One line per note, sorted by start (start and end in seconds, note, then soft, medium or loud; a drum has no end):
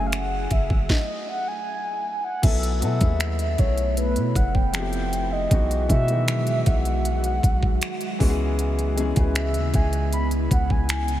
0.00 0.47 F#1 loud
0.00 0.71 F#3 medium
0.00 0.88 F#3 medium
0.00 0.71 A3 medium
0.00 0.88 A3 medium
0.00 0.72 C#4 medium
0.00 0.72 E4 medium
0.00 0.88 E4 medium
0.00 0.73 G#4 medium
0.00 0.88 G#4 medium
0.07 0.15 F5 medium
0.12 0.53 F#5 loud
0.12 finger snap loud
0.12 closed hi-hat medium
0.51 0.70 F#1 medium
0.51 0.92 E5 medium
0.51 kick medium
0.51 closed hi-hat medium
0.70 0.89 F#1 loud
0.70 kick medium
0.89 1.28 D#5 medium
0.89 kick loud
0.89 snare medium
1.29 1.49 F#5 loud
1.48 2.24 G#5 loud
2.24 2.45 F#5 loud
2.42 2.83 B1 loud
2.42 2.77 F#3 medium
2.42 4.72 A3 medium
2.42 2.77 A3 medium
2.42 4.72 B3 medium
2.42 2.78 B3 medium
2.42 5.48 E4 medium
2.42 2.78 E4 medium
2.42 2.82 E5 loud
2.42 kick loud
2.42 closed hi-hat medium
2.42 crash loud
2.47 2.79 A4 medium
2.63 closed hi-hat soft
2.80 3.00 B2 loud
2.80 2.98 F#3 medium
2.80 2.99 A3 medium
2.80 2.99 B3 medium
2.80 3.00 E4 medium
2.80 3.61 E5 loud
2.80 closed hi-hat medium
2.85 3.00 A4 medium
2.99 3.57 D#2 medium
2.99 4.36 F#3 medium
2.99 4.37 A3 medium
2.99 4.37 B3 medium
2.99 3.08 D#4 medium
2.99 kick medium
2.99 closed hi-hat soft
3.04 4.38 G#4 medium
3.09 4.41 E4 medium
3.20 finger snap loud
3.20 closed hi-hat medium
3.39 closed hi-hat soft
3.58 4.18 B1 loud
3.58 3.97 C#5 medium
3.58 kick medium
3.58 closed hi-hat medium
3.78 closed hi-hat soft
3.97 4.37 B4 loud
3.97 closed hi-hat medium
4.16 4.35 B2 loud
4.16 closed hi-hat medium
4.35 5.47 F1 loud
4.35 4.56 F#5 loud
4.35 kick medium
4.35 closed hi-hat medium
4.55 5.34 G5 loud
4.55 kick medium
4.73 5.41 F3 medium
4.73 4.80 G#3 medium
4.73 5.43 C4 medium
4.73 5.43 E4 medium
4.73 finger snap loud
4.73 closed hi-hat medium
4.77 5.45 A3 medium
4.77 5.44 G4 medium
4.93 closed hi-hat soft
5.13 closed hi-hat medium
5.32 5.89 D#5 loud
5.50 5.88 B1 loud
5.50 5.84 E3 medium
5.50 8.17 F#3 medium
5.50 5.85 G#3 medium
5.50 8.18 G#3 medium
5.50 5.85 B3 medium
5.50 5.86 D#4 medium
5.50 8.18 F#4 medium
5.50 kick loud
5.50 closed hi-hat medium
5.54 5.86 F#4 medium
5.71 closed hi-hat soft
5.88 6.63 B2 loud
5.88 6.06 E3 medium
5.88 6.06 G#3 medium
5.88 6.07 B3 medium
5.88 6.08 D#4 medium
5.88 6.68 E5 loud
5.88 kick medium
5.88 closed hi-hat medium
5.93 6.08 F#4 medium
6.08 7.46 D#3 medium
6.08 7.44 E3 medium
6.08 7.45 G#3 medium
6.08 7.45 B3 medium
6.08 closed hi-hat soft
6.12 7.46 F#4 medium
6.28 finger snap loud
6.28 closed hi-hat medium
6.47 closed hi-hat soft
6.66 7.40 B1 loud
6.66 8.20 F#5 loud
6.66 kick loud
6.66 closed hi-hat medium
6.85 closed hi-hat soft
7.05 closed hi-hat medium
7.24 closed hi-hat medium
7.43 7.80 B1 loud
7.43 kick medium
7.43 closed hi-hat medium
7.63 kick medium
7.82 finger snap loud
7.82 closed hi-hat medium
8.01 closed hi-hat soft
8.19 9.13 C#2 medium
8.19 11.20 C#3 medium
8.19 8.88 E3 medium
8.19 8.88 G#3 medium
8.19 11.20 B3 medium
8.19 8.89 B3 medium
8.19 8.89 C#4 medium
8.19 11.20 E4 medium
8.19 kick loud
8.19 open hi-hat medium
8.23 8.28 F#4 medium
8.30 8.93 G#4 loud
8.59 closed hi-hat medium
8.79 closed hi-hat soft
8.96 9.13 E3 medium
8.96 9.14 G#3 medium
8.96 9.15 B3 medium
8.96 9.15 C#4 medium
8.96 closed hi-hat medium
9.00 9.16 G#4 loud
9.15 9.57 C#2 loud
9.15 10.52 E3 medium
9.15 10.52 G#3 medium
9.15 10.53 B3 medium
9.15 10.53 C#4 medium
9.15 kick medium
9.15 closed hi-hat soft
9.20 10.54 B4 medium
9.35 9.77 E5 loud
9.35 finger snap loud
9.35 closed hi-hat medium
9.54 9.73 D#2 medium
9.54 closed hi-hat soft
9.74 10.48 C#2 loud
9.74 10.13 G#5 loud
9.74 kick medium
9.74 closed hi-hat medium
9.93 closed hi-hat soft
10.13 10.28 B5 loud
10.13 closed hi-hat medium
10.31 closed hi-hat medium
10.51 11.20 C#2 loud
10.51 10.73 F#5 loud
10.51 kick medium
10.51 closed hi-hat medium
10.70 11.20 G#5 loud
10.70 kick medium
10.89 finger snap loud
10.89 closed hi-hat medium
11.08 closed hi-hat medium